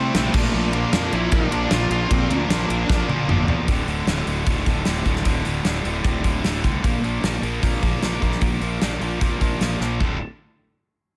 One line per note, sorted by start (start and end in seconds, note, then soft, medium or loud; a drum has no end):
0.00 0.14 C3 medium
0.00 0.14 G3 loud
0.00 0.34 A3 medium
0.00 0.15 C4 medium
0.00 0.13 E4 medium
0.00 0.30 E4 medium
0.00 0.13 G4 medium
0.00 0.13 C5 loud
0.00 0.30 C5 medium
0.00 0.30 G5 medium
0.14 0.29 A#1 medium
0.14 0.33 C3 medium
0.14 0.33 G3 medium
0.14 0.33 C4 loud
0.14 0.33 E4 medium
0.14 0.33 G4 medium
0.14 0.34 C5 medium
0.14 snare loud
0.14 ride loud
0.34 0.49 A#1 medium
0.34 0.53 A#2 medium
0.34 0.54 F3 loud
0.34 0.74 A3 medium
0.34 0.55 A#3 loud
0.34 1.33 D4 loud
0.34 3.64 F4 medium
0.34 1.33 F4 loud
0.34 1.34 A#4 loud
0.34 3.64 D5 medium
0.34 3.64 A#5 medium
0.34 kick loud
0.34 crash loud
0.53 0.83 A#1 medium
0.53 0.73 A#2 loud
0.53 0.74 F3 loud
0.53 0.74 A#3 loud
0.73 0.93 A#2 medium
0.73 0.93 F3 medium
0.73 0.94 A#3 medium
0.73 ride medium
0.93 1.07 F2 medium
0.93 1.12 A#2 medium
0.93 1.13 F3 medium
0.93 1.13 A#3 loud
0.93 1.15 D4 medium
0.93 snare loud
0.93 ride medium
1.12 1.27 A#1 medium
1.12 1.31 A#2 medium
1.12 1.32 F3 medium
1.12 1.32 A#3 loud
1.12 1.34 E4 loud
1.12 ride medium
1.32 1.47 A#1 loud
1.32 1.50 A#2 medium
1.32 1.52 F3 loud
1.32 1.51 A#3 loud
1.32 1.51 D4 medium
1.32 1.73 D4 loud
1.32 1.51 F4 medium
1.32 1.50 A#4 medium
1.32 kick loud
1.32 ride loud
1.51 1.66 A#1 medium
1.51 1.69 A#2 loud
1.51 1.71 F3 loud
1.51 1.71 A#3 loud
1.51 1.91 D4 loud
1.51 1.91 F4 loud
1.51 1.89 A#4 loud
1.51 ride medium
1.71 1.86 A#1 medium
1.71 1.89 A#2 medium
1.71 1.91 F3 medium
1.71 1.90 A#3 loud
1.71 1.91 F4 medium
1.71 snare loud
1.71 ride medium
1.90 2.05 A#1 medium
1.90 2.09 A#2 medium
1.90 2.10 F3 medium
1.90 2.10 A#3 medium
1.90 2.88 D4 loud
1.90 2.88 F4 medium
1.90 2.12 F4 medium
1.90 2.88 A#4 loud
1.90 ride medium
2.10 2.26 A#1 medium
2.10 2.28 A#2 loud
2.10 2.29 F3 loud
2.10 2.29 A#3 loud
2.10 2.31 C4 loud
2.10 kick loud
2.10 ride loud
2.29 2.44 D2 medium
2.29 2.48 A#2 medium
2.29 2.49 F3 medium
2.29 2.50 A#3 medium
2.29 3.05 D4 medium
2.29 ride medium
2.49 2.64 A#1 medium
2.49 2.68 A#2 medium
2.49 2.69 F3 medium
2.49 2.69 A#3 medium
2.49 snare loud
2.49 ride loud
2.69 2.84 A#1 loud
2.69 2.87 A#2 medium
2.69 2.88 F3 loud
2.69 2.88 A#3 loud
2.69 ride medium
2.89 3.04 A#1 medium
2.89 3.07 A#2 medium
2.89 3.08 F3 loud
2.89 3.08 A#3 loud
2.89 3.08 D4 medium
2.89 3.08 F4 medium
2.89 3.07 A#4 medium
2.89 kick loud
2.89 snare medium
3.08 3.23 A#2 medium
3.08 3.27 A#2 medium
3.08 3.27 F3 medium
3.08 3.28 A#3 loud
3.08 3.47 D4 medium
3.08 3.47 F4 loud
3.08 3.46 A#4 medium
3.08 high tom medium
3.27 3.42 G1 medium
3.27 3.47 A#2 loud
3.27 3.47 F3 loud
3.27 3.48 A#3 medium
3.27 mid tom medium
3.47 3.62 E2 medium
3.47 3.66 A#2 medium
3.47 3.67 F3 medium
3.47 3.67 A#3 medium
3.47 floor tom medium
3.68 3.85 D1 medium
3.68 3.87 D2 medium
3.68 3.87 A2 medium
3.68 3.88 D3 loud
3.68 kick loud
3.68 open hi-hat medium
3.85 4.03 D1 medium
3.85 4.07 D2 medium
3.85 4.07 A2 medium
3.85 4.08 D3 medium
3.85 open hi-hat soft
4.06 4.23 D1 medium
4.06 4.27 D2 medium
4.06 4.27 A2 medium
4.06 4.28 D3 medium
4.06 snare medium
4.06 open hi-hat medium
4.26 4.43 D1 medium
4.26 4.45 D2 medium
4.26 4.46 A2 medium
4.26 4.47 D3 medium
4.26 open hi-hat soft
4.46 4.63 D1 medium
4.46 4.65 D2 medium
4.46 4.66 A2 medium
4.46 4.66 D3 loud
4.46 kick medium
4.46 open hi-hat medium
4.66 4.83 D1 medium
4.66 4.85 D2 medium
4.66 4.85 A2 medium
4.66 4.86 D3 medium
4.66 kick medium
4.66 open hi-hat soft
4.85 5.02 D1 medium
4.85 5.05 D2 medium
4.85 5.06 A2 medium
4.85 5.06 D3 medium
4.85 snare medium
4.85 open hi-hat medium
5.05 5.22 D1 medium
5.05 5.24 D2 medium
5.05 5.25 A2 medium
5.05 5.25 D3 medium
5.05 kick medium
5.05 open hi-hat soft
5.16 snare soft
5.25 5.42 D1 medium
5.25 5.43 D2 medium
5.25 5.44 A2 medium
5.25 5.45 D3 medium
5.25 kick medium
5.25 open hi-hat medium
5.44 5.62 D1 medium
5.44 5.64 D2 medium
5.44 5.64 A2 medium
5.44 5.65 D3 medium
5.44 open hi-hat soft
5.65 5.82 D1 medium
5.65 5.84 D2 medium
5.65 5.85 A2 medium
5.65 5.85 D3 medium
5.65 snare loud
5.65 open hi-hat medium
5.84 6.01 D1 medium
5.84 6.03 D2 medium
5.84 6.04 A2 medium
5.84 6.05 D3 medium
5.84 open hi-hat medium
6.04 6.21 D1 medium
6.04 6.23 D2 medium
6.04 6.24 A2 loud
6.04 6.25 D3 medium
6.04 kick loud
6.04 open hi-hat medium
6.24 6.41 D1 medium
6.24 6.43 D2 medium
6.24 6.44 A2 medium
6.24 6.44 D3 medium
6.24 kick medium
6.24 open hi-hat medium
6.43 6.60 D1 medium
6.43 6.64 D2 medium
6.43 6.65 A2 medium
6.43 6.65 D3 loud
6.43 snare medium
6.43 open hi-hat medium
6.64 6.81 C2 medium
6.64 6.83 D2 medium
6.64 6.83 A2 medium
6.64 6.83 D3 medium
6.64 kick medium
6.64 open hi-hat soft
6.84 7.01 A#1 medium
6.84 7.03 A#2 medium
6.84 7.04 F3 loud
6.84 7.05 A#3 medium
6.84 kick medium
6.84 open hi-hat medium
7.03 7.20 A#1 medium
7.03 7.23 A#2 medium
7.03 7.24 F3 medium
7.03 7.24 A#3 medium
7.03 open hi-hat soft
7.23 7.40 A#1 medium
7.23 7.43 A#2 medium
7.23 7.43 F3 medium
7.23 7.44 A#3 medium
7.23 snare loud
7.23 open hi-hat medium
7.42 7.59 A#1 medium
7.42 7.61 A#2 medium
7.42 7.63 F3 medium
7.42 7.63 A#3 medium
7.42 open hi-hat soft
7.62 7.80 A#1 medium
7.62 7.81 A#2 medium
7.62 7.83 F3 medium
7.62 7.83 A#3 medium
7.62 kick medium
7.62 open hi-hat medium
7.83 7.99 A#1 medium
7.83 8.01 A#2 medium
7.83 8.02 F3 medium
7.83 8.02 A#3 medium
7.83 kick medium
7.83 open hi-hat soft
8.02 8.19 A#1 medium
8.02 8.21 A#2 medium
8.02 8.22 F3 medium
8.02 8.22 A#3 medium
8.02 snare medium
8.02 open hi-hat medium
8.22 8.39 A#1 medium
8.22 8.41 A#2 medium
8.22 8.41 F3 medium
8.22 8.42 A#3 medium
8.22 kick medium
8.22 open hi-hat soft
8.32 snare soft
8.41 8.58 A#1 medium
8.41 8.61 A#2 medium
8.41 8.61 F3 medium
8.41 8.62 A#3 medium
8.41 kick loud
8.41 open hi-hat medium
8.61 8.78 A#1 medium
8.61 8.80 A#2 medium
8.61 8.81 F3 medium
8.61 8.82 A#3 medium
8.61 open hi-hat soft
8.81 8.98 A#1 medium
8.81 9.00 A#2 medium
8.81 9.01 F3 medium
8.81 9.01 A#3 medium
8.81 snare loud
8.81 open hi-hat medium
9.01 9.18 A#1 medium
9.01 9.19 A#2 medium
9.01 9.20 F3 medium
9.01 9.21 A#3 medium
9.01 open hi-hat soft
9.21 9.38 A#1 medium
9.21 9.39 A#2 medium
9.21 9.40 F3 medium
9.21 9.41 A#3 medium
9.21 kick medium
9.21 open hi-hat medium
9.41 9.58 A#1 medium
9.41 9.59 A#2 medium
9.41 9.60 F3 medium
9.41 9.61 A#3 medium
9.41 kick medium
9.41 open hi-hat soft
9.61 9.78 A#1 medium
9.61 9.79 A#2 medium
9.61 9.80 F3 medium
9.61 9.81 A#3 medium
9.61 snare medium
9.61 open hi-hat medium
9.80 9.97 A#1 medium
9.80 9.99 A#2 medium
9.80 9.99 F3 medium
9.80 10.00 A#3 medium
9.80 snare soft
10.00 10.19 D1 medium
10.00 10.16 D2 medium
10.00 10.16 A2 medium
10.00 10.17 D3 loud
10.00 kick medium